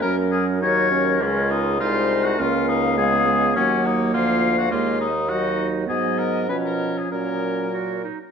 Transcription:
<<
  \new Staff \with { instrumentName = "Flute" } { \time 2/4 \key fis \major \tempo 4 = 102 ais'4 ais'4~ | ais'4 bis'4 | eis''2 | fis''4 eis''4 |
dis''8 r8 dis''4 | dis''4 cis''4 | cis''4. r8 | }
  \new Staff \with { instrumentName = "Oboe" } { \time 2/4 \key fis \major ais'8 gis'8 cis''4 | cis'8 dis'8 eis'8. fis'16 | eis'8 dis'8 gis'4 | cis'8 dis'8 eis'8. fis'16 |
eis'8 dis'8 fis'8. r16 | gis'8 ais'8 b'16 ais'8 gis'16 | ais'4. r8 | }
  \new Staff \with { instrumentName = "Clarinet" } { \time 2/4 \key fis \major cis'4 dis'8 cis'8 | eis'4 dis'4 | cis'4 b4 | ais2 |
ais8 r8 dis'4 | b4 cis'4 | cis'4 fis'8 dis'8 | }
  \new Staff \with { instrumentName = "French horn" } { \clef bass \time 2/4 \key fis \major fis2 | gis4 gis4 | ais4 gis8 gis8 | fis4 eis4 |
gis8 r8 fis4 | fis4 eis4 | fis4. r8 | }
  \new Staff \with { instrumentName = "Bassoon" } { \clef bass \time 2/4 \key fis \major fis,4 dis,4 | cis,4 bis,,4 | cis,2 | dis,4 d,4 |
dis,2 | gis,4 b,4 | ais,4. r8 | }
>>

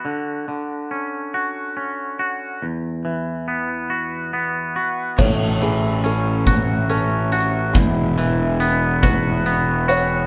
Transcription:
<<
  \new Staff \with { instrumentName = "Felt piano" } { \time 6/8 \key a \major \tempo 4. = 47 r2. | r2. | cis''8 gis'8 a'4 a'4 | r4. b'4 cis''8 | }
  \new Staff \with { instrumentName = "Pedal steel guitar" } { \time 6/8 \key a \major r2. | r2. | <a fis' cis''>2. | <gis e'>2. | }
  \new Staff \with { instrumentName = "Clean electric guitar" } { \time 6/8 \key a \major d8 d8 cis'8 fis'8 cis'8 fis'8 | e,8 e8 b8 fis'8 b8 fis'8 | a,8 e8 cis'8 fis'8 cis'8 fis'8 | e,8 e8 b8 fis'8 b8 fis'8 | }
  \new Staff \with { instrumentName = "Fingered electric bass" } { \clef bass \time 6/8 \key a \major r2. | r2. | a,,2. | e,,2. | }
  \new DrumStaff \with { instrumentName = "Drums" } \drummode { \time 6/8 r4. r4. | r4. r4. | <cymc bd>8 hh8 hh8 <hh bd>8 hh8 hh8 | <hh bd>8 hh8 hh8 <hh bd>8 hh8 hh8 | }
>>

